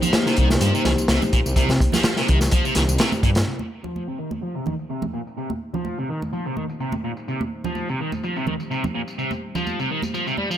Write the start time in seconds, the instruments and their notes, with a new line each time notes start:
Already playing: analog synth pad A#3 D#4 G4 C5
0.02 distorted electric guitar F3, closed hi-hat, tambourine, low conga
0.13 snare, closed hi-hat, tambourine, high conga
0.26 distorted electric guitar C3, snare, tambourine
0.36 detuned saw bass C2, distorted electric guitar D#3, kick, closed hi-hat
0.50 snare, tambourine, high conga
0.61 detuned saw bass G2, distorted electric guitar F3, closed hi-hat, tambourine
0.74 distorted electric guitar C3, tambourine
0.85 detuned saw bass C2, distorted electric guitar D#3, snare, closed hi-hat, high conga, low conga
0.98 detuned saw bass C2, tambourine
1.08 detuned saw bass C2, distorted electric guitar C3, snare, closed hi-hat, tambourine
1.22 tambourine, high conga, low conga
1.33 distorted electric guitar A#2, kick, closed hi-hat
1.46 detuned saw bass C2, tambourine
1.56 detuned saw bass C2, distorted electric guitar C3, kick, closed hi-hat, tambourine
1.69 detuned saw bass C3, snare, tambourine, high conga
1.80 kick, closed hi-hat
1.92 distorted electric guitar F3, snare, tambourine, low conga
2.03 snare, closed hi-hat, tambourine, high conga
2.17 distorted electric guitar C3, snare, tambourine
2.28 detuned saw bass C2, distorted electric guitar D#3, kick, closed hi-hat
2.41 snare, tambourine, high conga
2.51 distorted electric guitar F3, kick, closed hi-hat, tambourine
2.65 distorted electric guitar C3, tambourine
2.75 detuned saw bass C2, distorted electric guitar D#3, snare, closed hi-hat, high conga
2.89 detuned saw bass C2, tambourine
2.98 distorted electric guitar C3, snare, closed hi-hat, tambourine
3.12 tambourine, high conga
3.23 detuned saw bass G2, distorted electric guitar A#2, kick, closed hi-hat
3.35 snare, closed hi-hat, tambourine
3.47 distorted electric guitar C3, analog synth pad A#3 D#4 G4 C5
3.59 tambourine, high conga
3.84 distorted electric guitar F3, tambourine, low conga
3.95 tambourine, high conga
4.08 distorted electric guitar C3, tambourine
4.19 distorted electric guitar D#3
4.31 tambourine, high conga
4.43 distorted electric guitar F3, tambourine
4.55 distorted electric guitar C3, tambourine
4.66 distorted electric guitar D#3, high conga, low conga
4.79 tambourine
4.90 distorted electric guitar C3, tambourine
5.02 tambourine, high conga, low conga
5.14 distorted electric guitar A#2
5.27 tambourine
5.38 distorted electric guitar C3, tambourine
5.50 tambourine, high conga
5.74 distorted electric guitar F3, tambourine, low conga
5.85 tambourine, high conga
5.98 distorted electric guitar C3, tambourine
6.09 distorted electric guitar D#3
6.22 tambourine, high conga
6.33 distorted electric guitar F3, tambourine
6.46 distorted electric guitar C3, tambourine
6.57 distorted electric guitar D#3, high conga
6.69 tambourine
6.80 distorted electric guitar C3, tambourine
6.92 tambourine, high conga
7.04 distorted electric guitar A#2
7.17 tambourine
7.28 distorted electric guitar C3, tambourine
7.41 tambourine, high conga
7.64 distorted electric guitar F3, tambourine, low conga
7.75 tambourine, high conga
7.89 distorted electric guitar C3, tambourine
8.00 distorted electric guitar D#3
8.12 tambourine, high conga
8.23 distorted electric guitar F3, tambourine
8.36 distorted electric guitar C3, tambourine
8.47 distorted electric guitar D#3, high conga, low conga
8.60 tambourine
8.71 distorted electric guitar C3, tambourine
8.84 tambourine, high conga, low conga
8.95 distorted electric guitar A#2
9.08 tambourine
9.18 distorted electric guitar C3, tambourine
9.31 tambourine, high conga
9.55 distorted electric guitar F3, tambourine, low conga
9.66 tambourine, high conga
9.79 distorted electric guitar C3, tambourine
9.90 distorted electric guitar D#3
10.02 tambourine, high conga
10.14 distorted electric guitar F3, tambourine
10.27 distorted electric guitar C3, tambourine
10.37 distorted electric guitar G3, high conga
10.51 distorted electric guitar F3, tambourine